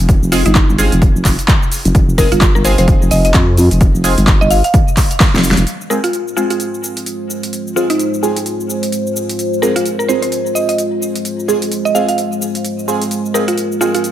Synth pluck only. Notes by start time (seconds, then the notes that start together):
0.32 F4
0.46 D#4
2.18 A#4
2.32 F4
2.55 A#4
2.65 C5
2.78 C5
3.11 D#5
3.25 D#5
4.41 D#5
4.51 F5
4.64 F5
5.90 A#4
6.04 F4
6.37 F4
6.50 F4
7.76 F4
7.90 D#4
9.62 A#4
9.76 F4
9.99 A#4
10.08 C5
10.22 C5
10.55 D#5
10.69 D#5
11.85 D#5
11.95 F5
12.09 F5
13.34 A#4
13.48 F4
13.81 F4
13.95 F4